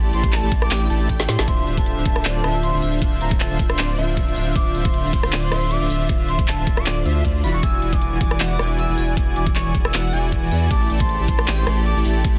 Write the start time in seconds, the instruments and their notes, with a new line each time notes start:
Already playing: sub bass A1, supersaw synth A3 E4 G4 D5 A5, ambient pad A3 D4 G4, digital synth lead A5
0.13 sub bass A1, supersaw synth A3 E4 G4 D5 A5, digital synth lead A5, soft synth lead C6, closed hi-hat
0.24 kick
0.32 soft synth lead A5, clap, closed hi-hat
0.43 sub bass A1, supersaw synth A3 E4 G4 D5 A5, digital synth lead A5
0.52 sub bass A1, supersaw synth A3 E4 G4 D5 A5, digital synth lead A5, kick, closed hi-hat
0.62 soft synth lead D6, cross-stick
0.71 sub bass A1, supersaw synth A3 E4 G4 D5 G5, digital synth lead G5, clap, closed hi-hat
0.90 sub bass A1, supersaw synth A3 E4 G4 D5 A5, digital synth lead A5, closed hi-hat
1.09 sub bass A1, supersaw synth A3 E4 G4 D5 G5, digital synth lead G5, kick, closed hi-hat
1.20 snare
1.28 sub bass A2, supersaw synth A3 E4 G4 D5 C6, digital synth lead C6, snare, open hi-hat
1.39 sub bass A1, supersaw synth A3 E4 G4 D5 A5, digital synth lead A5, snare
1.48 sub bass D1, supersaw synth D3 D4 F4 C5 E5, ambient pad D3 C4 F4, digital synth lead E5, soft synth lead C6, kick, closed hi-hat
1.67 sub bass D1, supersaw synth D3 D4 F4 C5 E5, digital synth lead E5, closed hi-hat
1.77 soft synth lead A5, kick
1.86 closed hi-hat
1.97 sub bass D1, supersaw synth D3 D4 F4 C5 E5, digital synth lead E5
2.05 sub bass D1, supersaw synth D3 D4 F4 C5 E5, digital synth lead E5, soft synth lead A5, kick, closed hi-hat
2.16 cross-stick
2.25 sub bass D1, supersaw synth D3 D4 F4 C5 D5, digital synth lead D5, clap, closed hi-hat
2.35 soft synth lead A5
2.44 sub bass D1, supersaw synth D3 D4 F4 C5 E5, digital synth lead E5, cross-stick, closed hi-hat
2.63 soft synth lead C6, closed hi-hat
2.74 sub bass D1, supersaw synth D3 D4 F4 C5 E5, digital synth lead E5
2.82 sub bass D1, supersaw synth D3 D4 F4 C5 E5, digital synth lead E5, open hi-hat
3.02 sub bass D1, supersaw synth D3 D4 F4 C5, digital synth lead E5, kick, closed hi-hat
3.21 sub bass D1, supersaw synth D3 D4 F4 C5 E5, digital synth lead E5, soft synth lead A#5, closed hi-hat
3.31 kick
3.40 soft synth lead A5, clap, closed hi-hat
3.50 sub bass D1, supersaw synth D3 D4 F4 C5 E5, digital synth lead E5
3.59 sub bass D1, digital synth lead E5, kick, closed hi-hat
3.70 soft synth lead C6, cross-stick
3.78 sub bass D1, supersaw synth D3 D4 F4 C5 D5, digital synth lead D5, clap, closed hi-hat
3.98 sub bass D1, supersaw synth D3 D4 F4 C5 E5, digital synth lead E5, closed hi-hat
4.17 kick, closed hi-hat
4.27 sub bass D1, supersaw synth D3 D4 F4 C5 E5, digital synth lead E5
4.36 sub bass D1, supersaw synth D3 D4 F4 C5 E5, digital synth lead E5, open hi-hat
4.55 sub bass D1, supersaw synth D3 D4 F4 C5 E5, ambient pad D4, digital synth lead E5, soft synth lead D6, kick, closed hi-hat
4.75 sub bass D1, supersaw synth D3 D4 F4 C5 E5, digital synth lead E5, closed hi-hat
4.85 soft synth lead C6, kick
4.94 closed hi-hat
5.04 sub bass D1, supersaw synth D3 D4 F4 C5 E5, digital synth lead E5
5.13 sub bass D1, digital synth lead E5, soft synth lead C6, kick, closed hi-hat
5.23 cross-stick
5.32 sub bass D1, supersaw synth D3 D4 F4 C5 D5, digital synth lead D5, clap, closed hi-hat
5.43 soft synth lead C6
5.52 sub bass D1, supersaw synth D3 D4 F4 C5 E5, digital synth lead E5, cross-stick, closed hi-hat
5.71 soft synth lead D6, closed hi-hat
5.81 sub bass D1, supersaw synth D3 D4 F4 C5 E5, digital synth lead E5
5.90 sub bass D1, supersaw synth D3 D4 F4 C5 E5, digital synth lead E5, open hi-hat
6.09 sub bass D1, supersaw synth D3 D4 F4 C5, digital synth lead E5, kick, closed hi-hat
6.28 sub bass D1, supersaw synth D3 D4 F4 C5 E5, digital synth lead E5, soft synth lead C6, closed hi-hat
6.39 kick
6.48 soft synth lead A5, clap, closed hi-hat
6.58 sub bass D1, supersaw synth D3 D4 F4 C5 E5, digital synth lead E5
6.67 sub bass D1, supersaw synth D3 D4 F4 C5 E5, digital synth lead E5, kick, closed hi-hat
6.77 soft synth lead D6, cross-stick
6.86 sub bass D1, supersaw synth D3 D4 F4 C5 D5, digital synth lead D5, clap, closed hi-hat
7.05 sub bass D2, supersaw synth D3 D4 F4 C5 E5, digital synth lead E5, closed hi-hat
7.25 sub bass D2, supersaw synth D3 D4 F4 C5 D5, digital synth lead D5, kick, closed hi-hat
7.44 sub bass E1, supersaw synth E3 E4 F#4 D5 B5, ambient pad E3 B3 G#4, digital synth lead B5, open hi-hat
7.54 sub bass E1, supersaw synth E3 E4 F#4 D5 C#6, digital synth lead C#6
7.63 sub bass E1, supersaw synth E3 E4 D5 G#5, digital synth lead G#5, soft synth lead E6, kick, closed hi-hat
7.82 sub bass E1, supersaw synth E3 E4 F#4 D5 G#5, digital synth lead G#5, closed hi-hat
7.92 soft synth lead D6, kick
8.02 closed hi-hat
8.12 sub bass E1, supersaw synth E3 E4 F#4 D5 G#5, digital synth lead G#5
8.21 sub bass E1, supersaw synth E3 E4 F#4 D5 G#5, digital synth lead G#5, soft synth lead D6, kick, closed hi-hat
8.31 cross-stick
8.40 sub bass E1, supersaw synth E3 E4 F#4 D5 F#5, digital synth lead F#5, clap, closed hi-hat
8.50 soft synth lead D6
8.59 sub bass E1, supersaw synth E3 E4 F#4 D5 G#5, digital synth lead G#5, cross-stick, closed hi-hat
8.78 soft synth lead E6, closed hi-hat
8.89 sub bass E1, supersaw synth E3 E4 F#4 D5 G#5, digital synth lead G#5
8.98 sub bass E1, supersaw synth E3 E4 F#4 D5 G#5, digital synth lead G#5, open hi-hat
9.17 sub bass E1, supersaw synth E4 D5 G#5, digital synth lead G#5, kick, closed hi-hat
9.36 sub bass E1, supersaw synth E3 E4 F#4 D5 G#5, digital synth lead G#5, soft synth lead D6, closed hi-hat
9.47 kick
9.55 soft synth lead C#6, clap, closed hi-hat
9.66 sub bass E1, supersaw synth E3 E4 F#4 D5 G#5, digital synth lead G#5
9.74 sub bass E1, supersaw synth E3 E4, digital synth lead G#5, kick, closed hi-hat
9.85 soft synth lead E6, cross-stick
9.94 sub bass E1, supersaw synth E3 E4 F#4 D5 F#5, digital synth lead F#5, clap, closed hi-hat
10.13 sub bass E1, supersaw synth E3 E4 F#4 D5 G#5, digital synth lead G#5, closed hi-hat
10.32 kick, closed hi-hat
10.42 sub bass E1, supersaw synth E3 E4 F#4 D5 G#5, digital synth lead G#5
10.51 sub bass E2, supersaw synth E3 E4 F#4 D5 G#5, digital synth lead G#5, open hi-hat
10.70 sub bass A1, ambient pad A3 G4, supersaw synth A3 E4 G4 D5, digital synth lead A5, soft synth lead D6, kick, closed hi-hat
10.90 sub bass A1, supersaw synth A3 E4 G4 D5 A5, digital synth lead A5, closed hi-hat
11.00 soft synth lead C6, kick
11.09 closed hi-hat
11.19 sub bass A1, supersaw synth A3 E4 G4 D5 A5, digital synth lead A5
11.28 sub bass A1, supersaw synth A3 E4 D5 A5, digital synth lead A5, soft synth lead C6, kick, closed hi-hat
11.39 cross-stick
11.47 sub bass A1, supersaw synth A3 E4 G4 D5 G5, digital synth lead G5, clap, closed hi-hat
11.58 soft synth lead C6
11.67 sub bass A1, supersaw synth A3 E4 G4 D5 A5, digital synth lead A5, cross-stick, closed hi-hat
11.86 soft synth lead D6, closed hi-hat
11.96 sub bass A1, supersaw synth A3 E4 G4 D5 A5, digital synth lead A5
12.05 sub bass A1, supersaw synth A3 E4 G4 D5 A5, digital synth lead A5, open hi-hat
12.24 sub bass A1, supersaw synth A3 G4 D5, digital synth lead A5, kick, closed hi-hat